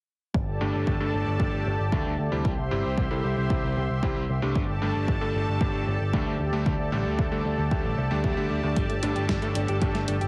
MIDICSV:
0, 0, Header, 1, 6, 480
1, 0, Start_track
1, 0, Tempo, 526316
1, 313, Time_signature, 4, 2, 24, 8
1, 9374, End_track
2, 0, Start_track
2, 0, Title_t, "Analog synth pad"
2, 0, Program_c, 0, 89
2, 313, Note_on_c, 0, 67, 80
2, 313, Note_on_c, 0, 69, 71
2, 313, Note_on_c, 0, 74, 70
2, 313, Note_on_c, 0, 81, 87
2, 2214, Note_off_c, 0, 67, 0
2, 2214, Note_off_c, 0, 69, 0
2, 2214, Note_off_c, 0, 74, 0
2, 2214, Note_off_c, 0, 81, 0
2, 2230, Note_on_c, 0, 67, 83
2, 2231, Note_on_c, 0, 72, 74
2, 2231, Note_on_c, 0, 84, 85
2, 2232, Note_on_c, 0, 76, 73
2, 4132, Note_off_c, 0, 67, 0
2, 4133, Note_off_c, 0, 72, 0
2, 4133, Note_off_c, 0, 76, 0
2, 4133, Note_off_c, 0, 84, 0
2, 4153, Note_on_c, 0, 67, 83
2, 4153, Note_on_c, 0, 81, 87
2, 4154, Note_on_c, 0, 69, 71
2, 4154, Note_on_c, 0, 74, 69
2, 6054, Note_off_c, 0, 69, 0
2, 6054, Note_off_c, 0, 81, 0
2, 6076, Note_on_c, 0, 69, 72
2, 6076, Note_on_c, 0, 81, 88
2, 7975, Note_off_c, 0, 69, 0
2, 7993, Note_on_c, 0, 69, 73
2, 9374, Note_off_c, 0, 67, 0
2, 9374, Note_off_c, 0, 69, 0
2, 9374, Note_off_c, 0, 74, 0
2, 9374, Note_off_c, 0, 81, 0
2, 9374, End_track
3, 0, Start_track
3, 0, Title_t, "Clean electric guitar"
3, 0, Program_c, 1, 27
3, 7993, Note_on_c, 1, 55, 80
3, 8064, Note_off_c, 1, 55, 0
3, 8114, Note_on_c, 1, 57, 68
3, 8156, Note_off_c, 1, 57, 0
3, 8234, Note_on_c, 1, 62, 71
3, 8304, Note_off_c, 1, 62, 0
3, 8353, Note_on_c, 1, 67, 72
3, 8424, Note_off_c, 1, 67, 0
3, 8473, Note_on_c, 1, 55, 79
3, 8544, Note_off_c, 1, 55, 0
3, 8593, Note_on_c, 1, 57, 70
3, 8635, Note_off_c, 1, 57, 0
3, 8713, Note_on_c, 1, 62, 72
3, 8784, Note_off_c, 1, 62, 0
3, 8834, Note_on_c, 1, 67, 70
3, 8904, Note_off_c, 1, 67, 0
3, 8953, Note_on_c, 1, 55, 78
3, 9024, Note_off_c, 1, 55, 0
3, 9073, Note_on_c, 1, 57, 73
3, 9115, Note_off_c, 1, 57, 0
3, 9192, Note_on_c, 1, 62, 73
3, 9263, Note_off_c, 1, 62, 0
3, 9313, Note_on_c, 1, 67, 71
3, 9374, Note_off_c, 1, 67, 0
3, 9374, End_track
4, 0, Start_track
4, 0, Title_t, "Electric grand piano"
4, 0, Program_c, 2, 2
4, 554, Note_on_c, 2, 43, 89
4, 554, Note_on_c, 2, 55, 82
4, 554, Note_on_c, 2, 57, 82
4, 554, Note_on_c, 2, 62, 85
4, 554, Note_on_c, 2, 67, 97
4, 842, Note_off_c, 2, 62, 0
4, 843, Note_off_c, 2, 43, 0
4, 843, Note_off_c, 2, 55, 0
4, 843, Note_off_c, 2, 57, 0
4, 843, Note_off_c, 2, 67, 0
4, 915, Note_on_c, 2, 43, 80
4, 915, Note_on_c, 2, 55, 72
4, 915, Note_on_c, 2, 57, 76
4, 915, Note_on_c, 2, 62, 73
4, 915, Note_on_c, 2, 69, 89
4, 1245, Note_off_c, 2, 43, 0
4, 1245, Note_off_c, 2, 55, 0
4, 1245, Note_off_c, 2, 57, 0
4, 1245, Note_off_c, 2, 62, 0
4, 1245, Note_off_c, 2, 69, 0
4, 1275, Note_on_c, 2, 43, 71
4, 1275, Note_on_c, 2, 55, 67
4, 1275, Note_on_c, 2, 57, 66
4, 1275, Note_on_c, 2, 62, 65
4, 1275, Note_on_c, 2, 67, 85
4, 1563, Note_off_c, 2, 43, 0
4, 1563, Note_off_c, 2, 55, 0
4, 1563, Note_off_c, 2, 57, 0
4, 1563, Note_off_c, 2, 62, 0
4, 1563, Note_off_c, 2, 67, 0
4, 1753, Note_on_c, 2, 43, 87
4, 1753, Note_on_c, 2, 55, 80
4, 1753, Note_on_c, 2, 62, 81
4, 1753, Note_on_c, 2, 67, 99
4, 1754, Note_on_c, 2, 57, 77
4, 1934, Note_off_c, 2, 43, 0
4, 1934, Note_off_c, 2, 55, 0
4, 1934, Note_off_c, 2, 57, 0
4, 1934, Note_off_c, 2, 62, 0
4, 1934, Note_off_c, 2, 67, 0
4, 2114, Note_on_c, 2, 48, 88
4, 2114, Note_on_c, 2, 55, 84
4, 2114, Note_on_c, 2, 60, 81
4, 2114, Note_on_c, 2, 64, 80
4, 2114, Note_on_c, 2, 67, 102
4, 2294, Note_off_c, 2, 48, 0
4, 2294, Note_off_c, 2, 55, 0
4, 2294, Note_off_c, 2, 60, 0
4, 2294, Note_off_c, 2, 64, 0
4, 2294, Note_off_c, 2, 67, 0
4, 2473, Note_on_c, 2, 60, 86
4, 2473, Note_on_c, 2, 67, 103
4, 2474, Note_on_c, 2, 48, 88
4, 2474, Note_on_c, 2, 55, 83
4, 2474, Note_on_c, 2, 64, 86
4, 2762, Note_off_c, 2, 48, 0
4, 2762, Note_off_c, 2, 55, 0
4, 2762, Note_off_c, 2, 60, 0
4, 2762, Note_off_c, 2, 64, 0
4, 2762, Note_off_c, 2, 67, 0
4, 2833, Note_on_c, 2, 48, 80
4, 2834, Note_on_c, 2, 55, 70
4, 2834, Note_on_c, 2, 60, 75
4, 2834, Note_on_c, 2, 64, 72
4, 2834, Note_on_c, 2, 69, 90
4, 3164, Note_off_c, 2, 48, 0
4, 3165, Note_off_c, 2, 55, 0
4, 3165, Note_off_c, 2, 60, 0
4, 3165, Note_off_c, 2, 64, 0
4, 3165, Note_off_c, 2, 69, 0
4, 3193, Note_on_c, 2, 48, 72
4, 3193, Note_on_c, 2, 55, 69
4, 3193, Note_on_c, 2, 60, 71
4, 3193, Note_on_c, 2, 67, 84
4, 3194, Note_on_c, 2, 64, 67
4, 3482, Note_off_c, 2, 48, 0
4, 3482, Note_off_c, 2, 55, 0
4, 3482, Note_off_c, 2, 60, 0
4, 3482, Note_off_c, 2, 64, 0
4, 3482, Note_off_c, 2, 67, 0
4, 3673, Note_on_c, 2, 55, 83
4, 3674, Note_on_c, 2, 48, 89
4, 3674, Note_on_c, 2, 60, 84
4, 3674, Note_on_c, 2, 64, 82
4, 3674, Note_on_c, 2, 67, 97
4, 3854, Note_off_c, 2, 48, 0
4, 3854, Note_off_c, 2, 55, 0
4, 3854, Note_off_c, 2, 60, 0
4, 3854, Note_off_c, 2, 64, 0
4, 3854, Note_off_c, 2, 67, 0
4, 4032, Note_on_c, 2, 67, 98
4, 4033, Note_on_c, 2, 43, 88
4, 4033, Note_on_c, 2, 55, 80
4, 4033, Note_on_c, 2, 57, 80
4, 4033, Note_on_c, 2, 62, 83
4, 4213, Note_off_c, 2, 43, 0
4, 4213, Note_off_c, 2, 67, 0
4, 4214, Note_off_c, 2, 55, 0
4, 4214, Note_off_c, 2, 57, 0
4, 4214, Note_off_c, 2, 62, 0
4, 4393, Note_on_c, 2, 43, 93
4, 4393, Note_on_c, 2, 57, 90
4, 4393, Note_on_c, 2, 62, 82
4, 4394, Note_on_c, 2, 55, 86
4, 4394, Note_on_c, 2, 67, 100
4, 4682, Note_off_c, 2, 43, 0
4, 4682, Note_off_c, 2, 55, 0
4, 4682, Note_off_c, 2, 57, 0
4, 4682, Note_off_c, 2, 62, 0
4, 4682, Note_off_c, 2, 67, 0
4, 4753, Note_on_c, 2, 43, 83
4, 4753, Note_on_c, 2, 62, 72
4, 4753, Note_on_c, 2, 69, 90
4, 4754, Note_on_c, 2, 55, 77
4, 4754, Note_on_c, 2, 57, 76
4, 5084, Note_off_c, 2, 43, 0
4, 5084, Note_off_c, 2, 55, 0
4, 5084, Note_off_c, 2, 62, 0
4, 5084, Note_off_c, 2, 69, 0
4, 5085, Note_off_c, 2, 57, 0
4, 5113, Note_on_c, 2, 43, 75
4, 5113, Note_on_c, 2, 55, 66
4, 5113, Note_on_c, 2, 57, 71
4, 5113, Note_on_c, 2, 62, 68
4, 5113, Note_on_c, 2, 67, 85
4, 5402, Note_off_c, 2, 43, 0
4, 5402, Note_off_c, 2, 55, 0
4, 5402, Note_off_c, 2, 57, 0
4, 5402, Note_off_c, 2, 62, 0
4, 5402, Note_off_c, 2, 67, 0
4, 5593, Note_on_c, 2, 55, 81
4, 5593, Note_on_c, 2, 57, 82
4, 5593, Note_on_c, 2, 62, 78
4, 5593, Note_on_c, 2, 67, 98
4, 5594, Note_on_c, 2, 43, 90
4, 5774, Note_off_c, 2, 43, 0
4, 5774, Note_off_c, 2, 55, 0
4, 5774, Note_off_c, 2, 57, 0
4, 5774, Note_off_c, 2, 62, 0
4, 5774, Note_off_c, 2, 67, 0
4, 5952, Note_on_c, 2, 57, 81
4, 5953, Note_on_c, 2, 50, 87
4, 5953, Note_on_c, 2, 55, 82
4, 5953, Note_on_c, 2, 62, 82
4, 5953, Note_on_c, 2, 67, 101
4, 6133, Note_off_c, 2, 57, 0
4, 6134, Note_off_c, 2, 50, 0
4, 6134, Note_off_c, 2, 55, 0
4, 6134, Note_off_c, 2, 62, 0
4, 6134, Note_off_c, 2, 67, 0
4, 6312, Note_on_c, 2, 50, 94
4, 6312, Note_on_c, 2, 55, 85
4, 6312, Note_on_c, 2, 57, 83
4, 6312, Note_on_c, 2, 67, 101
4, 6313, Note_on_c, 2, 62, 82
4, 6602, Note_off_c, 2, 50, 0
4, 6602, Note_off_c, 2, 55, 0
4, 6602, Note_off_c, 2, 57, 0
4, 6602, Note_off_c, 2, 62, 0
4, 6602, Note_off_c, 2, 67, 0
4, 6672, Note_on_c, 2, 55, 70
4, 6672, Note_on_c, 2, 62, 76
4, 6673, Note_on_c, 2, 50, 82
4, 6673, Note_on_c, 2, 57, 76
4, 6673, Note_on_c, 2, 69, 86
4, 7004, Note_off_c, 2, 50, 0
4, 7004, Note_off_c, 2, 55, 0
4, 7004, Note_off_c, 2, 57, 0
4, 7004, Note_off_c, 2, 62, 0
4, 7004, Note_off_c, 2, 69, 0
4, 7034, Note_on_c, 2, 50, 74
4, 7034, Note_on_c, 2, 55, 67
4, 7034, Note_on_c, 2, 57, 67
4, 7034, Note_on_c, 2, 62, 68
4, 7034, Note_on_c, 2, 67, 82
4, 7323, Note_off_c, 2, 50, 0
4, 7323, Note_off_c, 2, 55, 0
4, 7323, Note_off_c, 2, 57, 0
4, 7323, Note_off_c, 2, 62, 0
4, 7323, Note_off_c, 2, 67, 0
4, 7393, Note_on_c, 2, 62, 84
4, 7394, Note_on_c, 2, 50, 89
4, 7394, Note_on_c, 2, 55, 84
4, 7394, Note_on_c, 2, 57, 81
4, 7394, Note_on_c, 2, 67, 99
4, 7604, Note_off_c, 2, 62, 0
4, 7605, Note_off_c, 2, 50, 0
4, 7605, Note_off_c, 2, 55, 0
4, 7605, Note_off_c, 2, 57, 0
4, 7605, Note_off_c, 2, 67, 0
4, 7633, Note_on_c, 2, 50, 84
4, 7633, Note_on_c, 2, 55, 82
4, 7633, Note_on_c, 2, 57, 81
4, 7633, Note_on_c, 2, 62, 80
4, 7633, Note_on_c, 2, 67, 99
4, 7837, Note_off_c, 2, 50, 0
4, 7837, Note_off_c, 2, 55, 0
4, 7837, Note_off_c, 2, 57, 0
4, 7837, Note_off_c, 2, 62, 0
4, 7837, Note_off_c, 2, 67, 0
4, 7872, Note_on_c, 2, 55, 67
4, 7873, Note_on_c, 2, 43, 75
4, 7873, Note_on_c, 2, 57, 68
4, 7873, Note_on_c, 2, 62, 67
4, 7873, Note_on_c, 2, 67, 84
4, 8053, Note_off_c, 2, 55, 0
4, 8054, Note_off_c, 2, 43, 0
4, 8054, Note_off_c, 2, 57, 0
4, 8054, Note_off_c, 2, 62, 0
4, 8054, Note_off_c, 2, 67, 0
4, 8233, Note_on_c, 2, 43, 91
4, 8233, Note_on_c, 2, 55, 82
4, 8233, Note_on_c, 2, 57, 86
4, 8233, Note_on_c, 2, 62, 86
4, 8233, Note_on_c, 2, 67, 102
4, 8522, Note_off_c, 2, 43, 0
4, 8522, Note_off_c, 2, 55, 0
4, 8522, Note_off_c, 2, 57, 0
4, 8522, Note_off_c, 2, 62, 0
4, 8522, Note_off_c, 2, 67, 0
4, 8592, Note_on_c, 2, 43, 78
4, 8592, Note_on_c, 2, 55, 78
4, 8592, Note_on_c, 2, 57, 71
4, 8592, Note_on_c, 2, 62, 72
4, 8592, Note_on_c, 2, 69, 88
4, 8924, Note_off_c, 2, 43, 0
4, 8924, Note_off_c, 2, 55, 0
4, 8924, Note_off_c, 2, 57, 0
4, 8924, Note_off_c, 2, 62, 0
4, 8924, Note_off_c, 2, 69, 0
4, 8952, Note_on_c, 2, 43, 78
4, 8952, Note_on_c, 2, 55, 68
4, 8952, Note_on_c, 2, 57, 68
4, 8952, Note_on_c, 2, 62, 69
4, 8952, Note_on_c, 2, 67, 79
4, 9241, Note_off_c, 2, 55, 0
4, 9241, Note_off_c, 2, 62, 0
4, 9242, Note_off_c, 2, 43, 0
4, 9242, Note_off_c, 2, 57, 0
4, 9242, Note_off_c, 2, 67, 0
4, 9374, End_track
5, 0, Start_track
5, 0, Title_t, "Picked electric bass"
5, 0, Program_c, 3, 34
5, 314, Note_on_c, 3, 31, 93
5, 412, Note_off_c, 3, 31, 0
5, 435, Note_on_c, 3, 31, 70
5, 532, Note_off_c, 3, 31, 0
5, 555, Note_on_c, 3, 31, 92
5, 653, Note_off_c, 3, 31, 0
5, 676, Note_on_c, 3, 31, 73
5, 773, Note_off_c, 3, 31, 0
5, 794, Note_on_c, 3, 31, 88
5, 892, Note_off_c, 3, 31, 0
5, 915, Note_on_c, 3, 31, 70
5, 1013, Note_off_c, 3, 31, 0
5, 1036, Note_on_c, 3, 31, 87
5, 1133, Note_off_c, 3, 31, 0
5, 1154, Note_on_c, 3, 31, 68
5, 1252, Note_off_c, 3, 31, 0
5, 1275, Note_on_c, 3, 31, 90
5, 1372, Note_off_c, 3, 31, 0
5, 1394, Note_on_c, 3, 31, 69
5, 1492, Note_off_c, 3, 31, 0
5, 1514, Note_on_c, 3, 31, 86
5, 1612, Note_off_c, 3, 31, 0
5, 1634, Note_on_c, 3, 31, 76
5, 1732, Note_off_c, 3, 31, 0
5, 1754, Note_on_c, 3, 38, 96
5, 1852, Note_off_c, 3, 38, 0
5, 1874, Note_on_c, 3, 38, 71
5, 1972, Note_off_c, 3, 38, 0
5, 1993, Note_on_c, 3, 38, 85
5, 2092, Note_off_c, 3, 38, 0
5, 2114, Note_on_c, 3, 38, 72
5, 2212, Note_off_c, 3, 38, 0
5, 2234, Note_on_c, 3, 36, 96
5, 2332, Note_off_c, 3, 36, 0
5, 2354, Note_on_c, 3, 36, 71
5, 2452, Note_off_c, 3, 36, 0
5, 2475, Note_on_c, 3, 31, 93
5, 2572, Note_off_c, 3, 31, 0
5, 2594, Note_on_c, 3, 36, 72
5, 2692, Note_off_c, 3, 36, 0
5, 2714, Note_on_c, 3, 36, 90
5, 2812, Note_off_c, 3, 36, 0
5, 2833, Note_on_c, 3, 36, 70
5, 2932, Note_off_c, 3, 36, 0
5, 2954, Note_on_c, 3, 36, 88
5, 3052, Note_off_c, 3, 36, 0
5, 3074, Note_on_c, 3, 36, 72
5, 3172, Note_off_c, 3, 36, 0
5, 3194, Note_on_c, 3, 36, 89
5, 3292, Note_off_c, 3, 36, 0
5, 3315, Note_on_c, 3, 36, 72
5, 3412, Note_off_c, 3, 36, 0
5, 3435, Note_on_c, 3, 36, 87
5, 3532, Note_off_c, 3, 36, 0
5, 3554, Note_on_c, 3, 36, 76
5, 3652, Note_off_c, 3, 36, 0
5, 3674, Note_on_c, 3, 36, 100
5, 3772, Note_off_c, 3, 36, 0
5, 3794, Note_on_c, 3, 36, 71
5, 3892, Note_off_c, 3, 36, 0
5, 3914, Note_on_c, 3, 36, 87
5, 4012, Note_off_c, 3, 36, 0
5, 4034, Note_on_c, 3, 36, 75
5, 4132, Note_off_c, 3, 36, 0
5, 4154, Note_on_c, 3, 31, 97
5, 4252, Note_off_c, 3, 31, 0
5, 4275, Note_on_c, 3, 31, 73
5, 4372, Note_off_c, 3, 31, 0
5, 4394, Note_on_c, 3, 31, 85
5, 4492, Note_off_c, 3, 31, 0
5, 4514, Note_on_c, 3, 31, 75
5, 4612, Note_off_c, 3, 31, 0
5, 4634, Note_on_c, 3, 31, 90
5, 4732, Note_off_c, 3, 31, 0
5, 4752, Note_on_c, 3, 31, 73
5, 4851, Note_off_c, 3, 31, 0
5, 4873, Note_on_c, 3, 31, 86
5, 4971, Note_off_c, 3, 31, 0
5, 4993, Note_on_c, 3, 31, 77
5, 5092, Note_off_c, 3, 31, 0
5, 5114, Note_on_c, 3, 31, 91
5, 5212, Note_off_c, 3, 31, 0
5, 5232, Note_on_c, 3, 31, 71
5, 5331, Note_off_c, 3, 31, 0
5, 5351, Note_on_c, 3, 31, 89
5, 5451, Note_off_c, 3, 31, 0
5, 5471, Note_on_c, 3, 31, 72
5, 5570, Note_off_c, 3, 31, 0
5, 5595, Note_on_c, 3, 38, 97
5, 5693, Note_off_c, 3, 38, 0
5, 5712, Note_on_c, 3, 38, 71
5, 5811, Note_off_c, 3, 38, 0
5, 5831, Note_on_c, 3, 38, 89
5, 5931, Note_off_c, 3, 38, 0
5, 5951, Note_on_c, 3, 38, 75
5, 6050, Note_off_c, 3, 38, 0
5, 6075, Note_on_c, 3, 38, 91
5, 6172, Note_off_c, 3, 38, 0
5, 6191, Note_on_c, 3, 38, 69
5, 6291, Note_off_c, 3, 38, 0
5, 6310, Note_on_c, 3, 33, 90
5, 6410, Note_off_c, 3, 33, 0
5, 6432, Note_on_c, 3, 38, 73
5, 6531, Note_off_c, 3, 38, 0
5, 6554, Note_on_c, 3, 38, 87
5, 6652, Note_off_c, 3, 38, 0
5, 6672, Note_on_c, 3, 38, 70
5, 6771, Note_off_c, 3, 38, 0
5, 6792, Note_on_c, 3, 38, 89
5, 6891, Note_off_c, 3, 38, 0
5, 6912, Note_on_c, 3, 38, 70
5, 7011, Note_off_c, 3, 38, 0
5, 7035, Note_on_c, 3, 38, 93
5, 7132, Note_off_c, 3, 38, 0
5, 7151, Note_on_c, 3, 33, 73
5, 7250, Note_off_c, 3, 33, 0
5, 7272, Note_on_c, 3, 36, 91
5, 7371, Note_off_c, 3, 36, 0
5, 7392, Note_on_c, 3, 38, 77
5, 7491, Note_off_c, 3, 38, 0
5, 7514, Note_on_c, 3, 38, 99
5, 7612, Note_off_c, 3, 38, 0
5, 7632, Note_on_c, 3, 38, 74
5, 7731, Note_off_c, 3, 38, 0
5, 7752, Note_on_c, 3, 38, 86
5, 7851, Note_off_c, 3, 38, 0
5, 7872, Note_on_c, 3, 38, 76
5, 7971, Note_off_c, 3, 38, 0
5, 7994, Note_on_c, 3, 31, 97
5, 8092, Note_off_c, 3, 31, 0
5, 8113, Note_on_c, 3, 31, 67
5, 8211, Note_off_c, 3, 31, 0
5, 8232, Note_on_c, 3, 31, 88
5, 8331, Note_off_c, 3, 31, 0
5, 8352, Note_on_c, 3, 31, 77
5, 8451, Note_off_c, 3, 31, 0
5, 8474, Note_on_c, 3, 31, 87
5, 8572, Note_off_c, 3, 31, 0
5, 8593, Note_on_c, 3, 31, 71
5, 8691, Note_off_c, 3, 31, 0
5, 8713, Note_on_c, 3, 31, 84
5, 8812, Note_off_c, 3, 31, 0
5, 8832, Note_on_c, 3, 31, 70
5, 8931, Note_off_c, 3, 31, 0
5, 8953, Note_on_c, 3, 31, 95
5, 9051, Note_off_c, 3, 31, 0
5, 9074, Note_on_c, 3, 31, 69
5, 9172, Note_off_c, 3, 31, 0
5, 9193, Note_on_c, 3, 31, 86
5, 9291, Note_off_c, 3, 31, 0
5, 9314, Note_on_c, 3, 31, 72
5, 9374, Note_off_c, 3, 31, 0
5, 9374, End_track
6, 0, Start_track
6, 0, Title_t, "Drums"
6, 314, Note_on_c, 9, 36, 107
6, 405, Note_off_c, 9, 36, 0
6, 794, Note_on_c, 9, 36, 93
6, 885, Note_off_c, 9, 36, 0
6, 1274, Note_on_c, 9, 36, 108
6, 1365, Note_off_c, 9, 36, 0
6, 1754, Note_on_c, 9, 36, 90
6, 1845, Note_off_c, 9, 36, 0
6, 2234, Note_on_c, 9, 36, 114
6, 2325, Note_off_c, 9, 36, 0
6, 2714, Note_on_c, 9, 36, 102
6, 2805, Note_off_c, 9, 36, 0
6, 3194, Note_on_c, 9, 36, 121
6, 3285, Note_off_c, 9, 36, 0
6, 3673, Note_on_c, 9, 36, 96
6, 3765, Note_off_c, 9, 36, 0
6, 4154, Note_on_c, 9, 36, 108
6, 4245, Note_off_c, 9, 36, 0
6, 4634, Note_on_c, 9, 36, 100
6, 4725, Note_off_c, 9, 36, 0
6, 5114, Note_on_c, 9, 36, 124
6, 5206, Note_off_c, 9, 36, 0
6, 5594, Note_on_c, 9, 36, 106
6, 5686, Note_off_c, 9, 36, 0
6, 6075, Note_on_c, 9, 36, 115
6, 6166, Note_off_c, 9, 36, 0
6, 6555, Note_on_c, 9, 36, 104
6, 6646, Note_off_c, 9, 36, 0
6, 7035, Note_on_c, 9, 36, 118
6, 7126, Note_off_c, 9, 36, 0
6, 7514, Note_on_c, 9, 36, 101
6, 7605, Note_off_c, 9, 36, 0
6, 7993, Note_on_c, 9, 42, 59
6, 7994, Note_on_c, 9, 36, 109
6, 8084, Note_off_c, 9, 42, 0
6, 8085, Note_off_c, 9, 36, 0
6, 8114, Note_on_c, 9, 42, 35
6, 8205, Note_off_c, 9, 42, 0
6, 8233, Note_on_c, 9, 42, 78
6, 8324, Note_off_c, 9, 42, 0
6, 8352, Note_on_c, 9, 42, 35
6, 8444, Note_off_c, 9, 42, 0
6, 8472, Note_on_c, 9, 38, 110
6, 8472, Note_on_c, 9, 42, 60
6, 8473, Note_on_c, 9, 36, 101
6, 8563, Note_off_c, 9, 38, 0
6, 8563, Note_off_c, 9, 42, 0
6, 8564, Note_off_c, 9, 36, 0
6, 8592, Note_on_c, 9, 42, 36
6, 8683, Note_off_c, 9, 42, 0
6, 8713, Note_on_c, 9, 42, 85
6, 8804, Note_off_c, 9, 42, 0
6, 8832, Note_on_c, 9, 42, 36
6, 8923, Note_off_c, 9, 42, 0
6, 8952, Note_on_c, 9, 42, 62
6, 8953, Note_on_c, 9, 36, 112
6, 9043, Note_off_c, 9, 42, 0
6, 9044, Note_off_c, 9, 36, 0
6, 9073, Note_on_c, 9, 38, 33
6, 9073, Note_on_c, 9, 42, 35
6, 9164, Note_off_c, 9, 38, 0
6, 9164, Note_off_c, 9, 42, 0
6, 9192, Note_on_c, 9, 42, 85
6, 9284, Note_off_c, 9, 42, 0
6, 9313, Note_on_c, 9, 42, 33
6, 9374, Note_off_c, 9, 42, 0
6, 9374, End_track
0, 0, End_of_file